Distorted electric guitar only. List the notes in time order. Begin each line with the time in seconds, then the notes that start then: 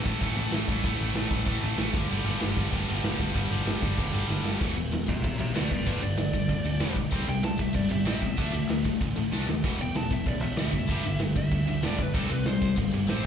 0.06 A2 E3 A3
0.21 A2 E3 A3
0.37 A2 E3 A3
0.53 A2 E3 A3
0.68 A2 E3 A3
0.84 A2 E3 A3
1.00 A2 E3 A3
1.16 A2 E3 A3
1.32 A2 E3 A3
1.46 A2 E3 A3
1.62 A2 E3 A3
1.77 A2 E3 A3
1.94 G2 D3 G3
2.09 G2 D3 G3
2.26 G2 D3 G3
2.40 G2 D3 G3
2.56 G2 D3 G3
2.72 G2 D3 G3
2.88 G2 D3 G3
3.03 G2 D3 G3
3.19 G2 D3 G3
3.34 G2 D3 G3
3.50 G2 D3 G3
3.65 G2 D3 G3
3.81 G2 D3 G3
3.97 G2 D3 G3
4.11 G2 D3 G3
4.28 G2 D3 G3
4.44 G2 D3 G3
4.60 E2 B2 E3
4.76 E2 B2
4.92 E2 B2
5.08 E2 B2
5.24 E2 B2
5.41 E2 B2
5.55 E2 B2 E3
5.71 E2 B2
5.86 G2 D3 G3
6.03 G2 D3
6.17 G2 D3
6.33 G2 D3
6.49 G2 D3
6.65 G2 D3
6.80 G2 D3 G3
6.96 G2 D3
7.12 C3 G3 C4
7.28 C3 G3
7.44 C3 G3
7.59 C3 G3
7.75 C3 G3
7.90 C3 G3
8.05 C3 G3 C4
8.22 C3 G3
8.37 D3 A3 D4
8.53 D3 A3
8.69 D3 A3
8.85 D3 A3
9.01 D3 A3
9.17 D3 A3
9.32 D3 A3 D4
9.49 D3 A3
9.64 E2 B2 E3
9.81 E2 B2
9.96 E2 B2
10.12 E2 B2
10.28 E2 B2
10.43 E2 B2
10.59 E2 B2 E3
10.74 E2 B2
10.90 G2 D3 G3
11.06 G2 D3
11.21 G2 D3
11.37 G2 D3
11.52 G2 D3
11.68 G2 D3
11.83 G2 D3 G3
12.00 G2 D3
12.15 C3 G3 C4
12.32 C3 G3
12.48 C3 G3
12.63 C3 G3
12.78 C3 G3
12.94 C3 G3
13.10 C3 G3 C4